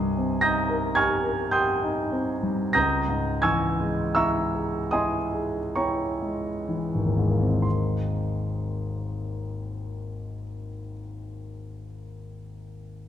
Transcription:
0.00 2.72 C2 medium
0.00 2.79 G2 soft
0.00 0.33 G3 soft
0.00 0.39 D#5 medium
0.00 0.39 G#5 medium
0.00 0.39 C6 medium
0.00 0.41 D#6 medium
0.17 0.59 C4 soft
0.41 0.86 D#4 soft
0.41 0.92 A#5 medium
0.41 0.93 D#6 medium
0.41 0.92 G6 medium
0.41 0.96 A#6 medium
0.69 1.13 A#4 soft
0.95 1.41 G4 soft
0.95 1.49 G#5 medium
0.95 1.49 C#6 medium
0.95 1.49 F6 medium
0.95 1.52 G#6 medium
1.24 1.70 A#4 soft
1.51 2.00 G4 soft
1.51 2.71 G5 medium
1.51 2.71 C6 medium
1.51 2.71 D#6 medium
1.51 2.73 G6 medium
1.82 2.31 D#4 soft
2.11 2.62 C4 soft
2.43 2.75 G3 soft
2.73 7.60 C#2 medium
2.73 3.39 A#5 medium
2.73 3.39 D#6 medium
2.73 3.39 G6 medium
2.73 3.43 A#6 medium
3.08 3.65 G#2 soft
3.42 4.02 E3 soft
3.42 4.12 G#5 medium
3.42 4.12 C#6 medium
3.42 4.12 E6 medium
3.42 4.16 G#6 medium
3.79 4.39 G#3 soft
4.15 4.78 E4 soft
4.15 4.89 E5 medium
4.15 4.89 A#5 medium
4.15 4.89 C#6 medium
4.15 4.93 E6 medium
4.54 5.18 G#4 soft
4.91 5.59 E4 soft
4.91 5.72 D#5 soft
4.91 5.72 G#5 medium
4.91 5.72 C6 soft
4.91 5.75 D#6 medium
5.34 6.02 G#4 soft
5.76 6.49 E4 soft
5.76 7.60 C#5 soft
5.76 7.60 G5 soft
5.76 7.60 A#5 soft
5.76 7.63 C#6 medium
6.22 6.98 G#3 soft
6.69 7.45 E3 soft
6.94 10.32 G#1 soft
7.06 10.43 D#2 soft
7.17 7.64 G#2 soft
7.17 10.55 G#3 soft
7.30 10.67 A#3 soft
7.41 10.79 C4 soft
7.53 10.91 D#4 soft
7.62 11.00 C6 soft

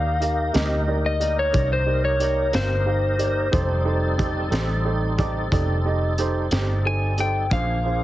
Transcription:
0.00 0.52 D#2 medium
0.00 3.49 A#3 medium
0.00 0.13 D#4 soft
0.00 3.49 D#4 medium
0.00 0.13 G4 soft
0.00 3.49 G4 medium
0.00 0.13 A#4 soft
0.00 3.50 A#4 medium
0.00 0.14 D5 medium
0.00 0.57 F5 medium
0.20 0.46 D#4 soft
0.20 0.47 G4 soft
0.20 0.47 A#4 soft
0.20 0.47 F5 soft
0.20 closed hi-hat medium
0.53 1.52 D2 medium
0.53 0.79 D#4 medium
0.53 0.79 G4 medium
0.53 0.80 A#4 soft
0.53 0.80 D#5 medium
0.53 1.01 D#5 medium
0.53 snare medium
0.53 closed hi-hat medium
0.87 1.13 D#4 medium
0.87 1.13 G4 soft
0.87 1.13 A#4 soft
0.87 1.13 D5 medium
1.06 1.38 D#5 medium
1.19 1.45 D#4 medium
1.19 1.46 G4 soft
1.19 1.46 A#4 soft
1.19 1.46 D5 medium
1.19 closed hi-hat medium
1.39 1.71 C#5 medium
1.53 2.51 C2 medium
1.53 1.79 D#4 soft
1.53 1.79 G4 soft
1.53 1.79 A#4 soft
1.53 1.79 D5 medium
1.53 kick loud
1.53 closed hi-hat medium
1.73 2.04 C5 medium
1.86 2.12 D#4 soft
1.86 2.12 G4 soft
1.86 2.12 A#4 soft
1.86 2.12 D5 soft
2.05 2.53 C#5 medium
2.19 2.45 D#4 soft
2.19 2.45 G4 soft
2.19 2.45 A#4 soft
2.19 2.46 D5 medium
2.19 closed hi-hat medium
2.52 3.51 G1 medium
2.52 2.78 D#4 soft
2.52 2.78 G4 soft
2.52 2.78 A#4 soft
2.52 4.49 C5 medium
2.52 2.79 F5 soft
2.52 snare medium
2.52 closed hi-hat medium
2.85 3.11 D#4 medium
2.85 3.11 G4 soft
2.85 3.11 A#4 soft
2.85 3.12 F5 medium
3.18 3.44 D#4 soft
3.18 3.45 G4 soft
3.18 3.44 A#4 soft
3.18 3.45 D5 medium
3.18 closed hi-hat medium
3.51 4.50 F1 medium
3.51 7.47 G3 medium
3.51 7.47 C4 medium
3.51 3.77 D#4 medium
3.51 7.47 D#4 medium
3.51 3.78 G4 medium
3.51 3.78 A4 medium
3.51 7.47 A4 medium
3.51 3.78 C5 medium
3.51 kick loud
3.51 closed hi-hat medium
3.85 4.11 D#4 medium
3.85 4.11 G4 medium
3.85 4.11 A4 medium
3.85 4.11 C5 medium
4.18 4.44 D#4 medium
4.18 4.44 G4 medium
4.18 4.44 A4 medium
4.18 4.44 C5 medium
4.18 kick medium
4.18 closed hi-hat medium
4.50 5.49 A1 medium
4.50 4.77 D#4 medium
4.50 4.77 G4 medium
4.50 4.77 A4 medium
4.50 4.77 C5 medium
4.50 snare medium
4.50 closed hi-hat medium
4.84 5.10 D#4 medium
4.84 5.10 G4 medium
4.84 5.11 A4 medium
4.84 5.11 C5 medium
5.18 5.43 D#4 medium
5.18 5.44 G4 medium
5.18 5.44 A4 medium
5.18 5.44 D5 medium
5.18 kick medium
5.18 closed hi-hat soft
5.52 6.48 F1 medium
5.52 5.77 D#4 medium
5.52 5.77 G4 medium
5.52 5.77 A4 medium
5.52 5.78 D5 medium
5.52 kick loud
5.52 closed hi-hat medium
5.85 6.10 D#4 medium
5.85 6.10 G4 medium
5.85 6.11 A4 soft
5.85 6.11 D#5 medium
6.18 6.43 D#4 medium
6.18 6.44 G4 medium
6.18 6.44 A4 medium
6.18 6.44 C5 medium
6.18 closed hi-hat medium
6.51 7.48 G1 medium
6.51 6.77 D#4 medium
6.51 6.77 G4 medium
6.51 6.77 A4 medium
6.51 6.77 C5 medium
6.51 snare loud
6.51 closed hi-hat medium
6.85 7.10 D#4 medium
6.85 7.10 G4 soft
6.85 7.10 A4 soft
6.85 7.10 C5 medium
6.85 7.18 G#5 medium
7.18 7.43 D#4 soft
7.18 7.43 G4 soft
7.18 7.43 A4 soft
7.18 7.44 C5 medium
7.18 7.52 G5 medium
7.18 closed hi-hat medium
7.50 8.04 A#1 medium
7.50 8.04 A#3 medium
7.50 8.04 D4 medium
7.50 7.76 D4 medium
7.50 8.04 F4 medium
7.50 7.77 F4 medium
7.50 8.04 G#4 medium
7.50 7.77 G#4 medium
7.50 7.77 C5 medium
7.50 8.04 F5 medium
7.50 kick loud
7.50 closed hi-hat medium
7.85 8.04 D4 medium
7.85 8.04 F4 soft
7.85 8.04 G#4 soft
7.85 8.04 C5 medium

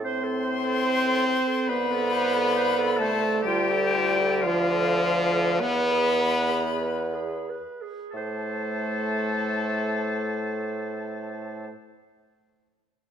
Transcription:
0.00 1.36 A2 medium
0.00 1.71 C4 loud
0.04 0.25 C5 loud
0.04 1.70 C5 loud
0.04 1.69 C6 loud
0.23 0.46 A4 medium
0.44 0.66 C5 medium
0.65 0.85 A4 medium
0.85 1.08 C5 medium
1.07 1.28 A4 medium
1.26 1.49 C5 medium
1.47 1.69 A4 medium
1.67 3.41 C2 loud
1.67 3.01 B3 loud
1.67 2.98 B4 loud
1.67 1.93 C5 medium
1.67 3.00 B5 loud
1.91 2.14 A4 medium
2.13 2.35 C5 medium
2.33 2.55 A4 medium
2.56 2.79 C5 loud
2.78 3.02 A4 loud
2.97 3.44 A3 loud
2.97 3.41 A4 loud
2.97 3.25 C5 medium
2.97 3.44 A5 loud
3.23 3.46 A4 medium
3.42 5.62 D2 loud
3.42 4.46 G3 loud
3.42 4.43 G4 loud
3.42 4.47 G5 loud
3.47 3.72 F4 loud
3.70 3.95 A4 medium
3.94 4.21 F4 medium
4.20 4.45 A4 medium
4.42 5.62 F3 loud
4.42 5.60 F4 loud
4.42 4.74 F4 medium
4.42 5.63 F5 loud
4.72 5.03 A4 medium
5.02 5.34 F4 medium
5.32 5.60 A4 medium
5.59 7.63 E2 loud
5.59 7.46 B3 loud
5.59 7.46 B4 loud
5.59 5.93 B4 medium
5.59 7.47 B5 loud
5.91 6.22 G#4 medium
6.20 6.51 B4 medium
6.50 6.80 G#4 medium
6.81 7.15 B4 medium
7.14 7.51 G#4 medium
7.49 7.83 B4 medium
7.82 8.13 G#4 medium
8.11 11.69 A2 medium
8.11 11.70 A3 loud
8.11 11.67 A4 loud
8.11 11.68 A5 medium
8.16 11.72 C5 loud

